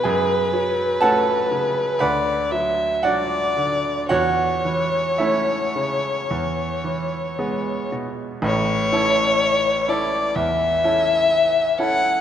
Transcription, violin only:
\new Staff \with { instrumentName = "Violin" } { \time 4/4 \key a \major \tempo 4 = 60 b'2 d''8 e''8 d''4 | cis''2.~ cis''8 r8 | cis''4. d''8 e''4. fis''8 | }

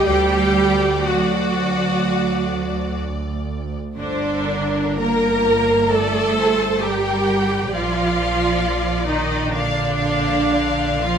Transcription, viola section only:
\new Staff \with { instrumentName = "Viola section" } { \time 4/4 \key g \minor \tempo 4 = 65 g'4 fis'2 r4 | d'4 bes'4 a'4 g'4 | f'4. ees'8 d'4.~ d'16 f'16 | }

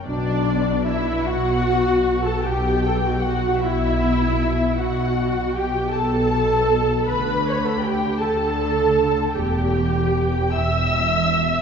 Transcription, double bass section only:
\new Staff \with { instrumentName = "Double bass section" } { \clef bass \time 6/8 \key b \minor \tempo 4. = 52 b,,4. b,,4. | b,,4. b,,4. | b,,4. b,,4. | d,4. d,4. |
e,,4. e,,4. | }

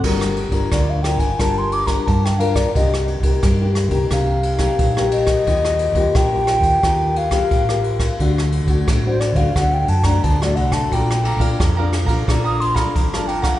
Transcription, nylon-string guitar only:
\new Staff \with { instrumentName = "Nylon-string guitar" } { \time 4/4 \key g \minor \tempo 4 = 88 << { <d' f' bes'>8 r16 <d' f' bes'>8. <d' f' bes'>16 r16 <d' f' bes'>8. <d' f' bes'>8. <d' f' bes'>8 | <bes ees' g'>8 r16 <bes ees' g'>8 <bes ees' g'>8 <bes ees' g'>16 <bes ees' g'>8. <bes ees' g'>8 <bes ees' g'>8. | <bes f' g'>8. <bes f' g'>8 <bes f' g'>8. <bes f' g'>8. <bes f' g'>8 <bes f' g'>8. | <a d' fis'>8. <a d' fis'>8 <a d' fis'>8 <a d' fis'>16 <a d' fis'>8 r16 <a d' fis'>8 <a d' fis'>8. |
<d' f' a'>8 r16 <d' f' a'>8 <d' f' a'>8 <d' f' a'>16 <d' f' a'>8. <d' f' a'>8 <d' f' a'>8. | } \\ { g4 d4 g4 d4 | c4 g,4 c4 g,4 | ees4 bes,4 ees4 r4 | d4 a,4 d4 a,4 |
bes4 f4 bes4 f4 | } >> }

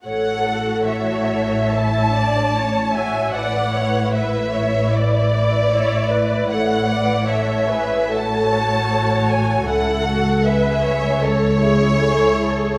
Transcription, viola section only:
\new Staff \with { instrumentName = "Viola section" } { \time 4/4 \key a \major \tempo 4 = 76 a'4 cis''4 e''8 d''8 cis''8 e''8 | d''8 cis''8 b'8 cis''8 d''4 cis''8 b'8 | a'8 d''8 cis''8 b'8 a'8 cis''4. | a'4 b'8 cis''8 a'8 gis'8 a'8 gis'8 | }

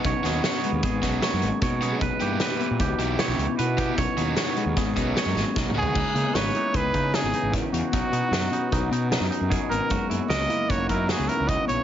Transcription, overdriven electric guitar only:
\new Staff \with { instrumentName = "Overdriven electric guitar" } { \time 5/4 \key b \major \tempo 4 = 152 <fis b dis' fis'>8 <fis b dis' fis'>8 <fis b dis' fis'>8 r4 <fis b dis' fis'>8 <fis b dis' fis'>8 r4 <fis b dis' fis'>8 | r8 <e b e' g'>8 <e b e' g'>8 r4 <e b e' g'>8 <e b e' g'>8 r4 <e b e' g'>8 | r8 <fis b dis' fis'>8 <fis b dis' fis'>8 r4 <fis b dis' fis'>8 <fis b dis' fis'>8 r4 <fis b dis' fis'>8 | r1 r4 |
r1 r4 | r1 r4 | }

